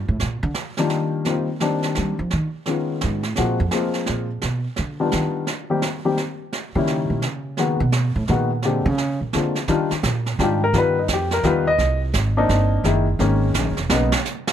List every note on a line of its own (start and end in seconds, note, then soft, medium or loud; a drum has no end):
0.08 0.20 A2 medium
0.20 0.42 A#2 medium
0.20 brush sweep soft
0.20 snare soft
0.43 0.50 D3 loud
0.54 snare medium
0.77 1.24 D#3 medium
0.77 1.24 G3 medium
0.77 1.24 A#3 medium
0.77 1.24 D4 medium
0.77 1.24 F4 medium
0.77 snare soft
0.90 snare medium
1.25 1.46 D#3 medium
1.25 1.46 G3 soft
1.25 1.46 A#3 soft
1.25 1.46 C4 medium
1.25 1.47 F4 medium
1.25 brush sweep soft
1.25 snare soft
1.60 2.14 D#3 medium
1.60 2.14 G3 medium
1.60 2.14 A#3 medium
1.60 2.14 C4 soft
1.60 2.15 D4 medium
1.60 snare medium
1.83 snare soft
1.95 2.19 G3 medium
1.95 snare soft
2.19 2.31 F3 medium
2.30 2.46 D#3 medium
2.30 brush sweep soft
2.30 snare soft
2.66 3.20 D#3 soft
2.66 3.20 G#3 soft
2.66 3.20 B3 soft
2.66 3.20 C#4 soft
2.66 3.20 F4 medium
2.66 snare soft
3.01 3.25 G#2 medium
3.01 snare medium
3.23 3.37 A2 medium
3.23 snare soft
3.36 3.59 A#2 medium
3.36 3.57 F3 medium
3.36 3.57 G#3 medium
3.36 3.58 A#3 medium
3.36 3.58 C4 soft
3.36 3.58 F#4 medium
3.36 brush sweep medium
3.36 snare soft
3.60 3.67 F2 medium
3.71 4.25 F3 medium
3.71 4.25 G#3 medium
3.71 4.25 A#3 medium
3.71 4.25 C4 medium
3.71 4.26 F4 medium
3.71 snare medium
3.93 snare soft
4.06 4.41 A#2 medium
4.06 snare soft
4.42 4.64 B2 medium
4.42 brush sweep soft
4.42 snare soft
4.76 5.11 D3 medium
4.76 snare soft
5.00 5.45 D#3 medium
5.00 5.45 G3 medium
5.00 5.45 B3 medium
5.00 5.45 D4 medium
5.00 5.45 F4 medium
5.12 5.26 D#3 medium
5.12 snare medium
5.47 brush sweep soft
5.47 snare soft
5.70 5.81 D#3 medium
5.70 5.81 G3 medium
5.70 5.81 A#3 medium
5.70 5.82 C4 medium
5.70 5.82 G4 medium
5.82 snare medium
6.05 6.16 D#3 medium
6.05 6.17 G3 medium
6.05 6.17 A#3 medium
6.05 6.17 C4 medium
6.05 6.17 G4 medium
6.17 snare soft
6.53 brush sweep soft
6.53 snare soft
6.75 7.08 C#3 medium
6.75 7.21 D#3 medium
6.75 7.21 G3 medium
6.75 7.21 A#3 medium
6.75 7.21 C#4 medium
6.75 7.21 E4 medium
6.87 snare soft
7.10 7.24 A#2 medium
7.22 7.80 C#3 loud
7.22 snare medium
7.57 7.79 D#3 medium
7.57 7.79 G#3 medium
7.57 7.79 A#3 soft
7.57 7.79 B3 medium
7.57 7.79 F#4 medium
7.57 brush sweep soft
7.57 snare soft
7.80 8.13 B2 loud
7.92 snare medium
8.16 8.28 A2 medium
8.28 8.82 A#2 medium
8.28 8.49 D#3 medium
8.28 8.49 G#3 soft
8.28 8.49 A#3 medium
8.28 8.49 B3 medium
8.28 8.49 F#4 medium
8.28 snare soft
8.62 8.84 D3 medium
8.62 8.84 G#3 medium
8.62 8.84 A#3 medium
8.62 8.84 C4 medium
8.62 8.84 G4 medium
8.62 brush sweep soft
8.62 snare soft
8.86 9.18 C#3 loud
8.98 snare soft
9.21 9.33 A#2 medium
9.33 9.61 D3 medium
9.33 9.54 D3 soft
9.33 9.54 G#3 soft
9.33 9.54 A#3 soft
9.33 9.54 C4 soft
9.33 9.55 F4 medium
9.33 snare medium
9.55 snare soft
9.68 9.89 D#3 medium
9.68 9.89 G3 medium
9.68 9.89 D4 medium
9.68 9.89 F4 medium
9.68 brush sweep soft
9.68 kick soft
9.68 snare soft
9.91 muted upright bass stroke soft
9.91 snare soft
10.03 10.38 A#2 medium
10.03 kick soft
10.03 snare medium
10.03 hi-hat pedal medium
10.26 snare soft
10.39 10.73 G#2 medium
10.39 10.59 D#3 medium
10.39 10.60 G3 medium
10.39 10.60 D4 medium
10.39 10.60 F4 medium
10.39 kick soft
10.39 snare soft
10.44 10.63 G4 medium
10.64 10.75 A#4 medium
10.73 11.08 G2 medium
10.73 10.94 D#3 medium
10.73 10.94 G3 medium
10.73 10.95 B3 medium
10.73 10.95 F4 medium
10.73 brush sweep soft
10.73 kick soft
10.73 snare soft
10.78 10.98 B4 medium
10.99 11.10 D#4 medium
11.08 11.43 F2 medium
11.08 kick soft
11.08 snare medium
11.08 hi-hat pedal medium
11.13 11.33 G4 medium
11.31 11.45 A#4 medium
11.31 snare soft
11.43 11.78 D#2 medium
11.43 11.64 D#3 medium
11.43 11.65 G3 medium
11.43 11.65 B3 medium
11.43 11.65 F4 loud
11.43 kick soft
11.43 snare soft
11.47 11.68 B4 medium
11.67 12.00 D#5 loud
11.78 12.13 C2 medium
11.78 brush sweep medium
11.78 kick soft
11.78 snare soft
12.13 12.48 G#1 medium
12.13 kick soft
12.13 snare medium
12.13 hi-hat pedal medium
12.37 12.82 A#3 medium
12.37 12.83 C4 medium
12.37 12.82 D4 medium
12.37 12.83 D#4 medium
12.49 12.83 G1 loud
12.49 kick soft
12.49 snare soft
12.84 13.18 F#1 medium
12.84 13.05 D#3 medium
12.84 13.05 G#3 medium
12.84 13.05 A#3 medium
12.84 13.05 E4 medium
12.84 brush sweep medium
12.84 kick soft
12.84 snare soft
13.19 13.53 G#1 medium
13.19 13.73 D#3 medium
13.19 13.73 G#3 medium
13.19 13.73 A#3 medium
13.19 13.73 C#4 medium
13.19 kick soft
13.19 snare soft
13.54 13.66 A#1 medium
13.54 kick soft
13.54 snare medium
13.54 hi-hat pedal medium
13.66 13.77 F#1 medium
13.77 13.89 E1 medium
13.77 snare soft
13.89 14.11 B1 medium
13.89 14.10 C#3 medium
13.89 14.11 A#3 medium
13.89 14.11 B3 medium
13.89 14.11 D#4 medium
13.89 snare loud
14.12 snare loud
14.25 snare soft
14.25 hi-hat pedal medium
14.47 snare loud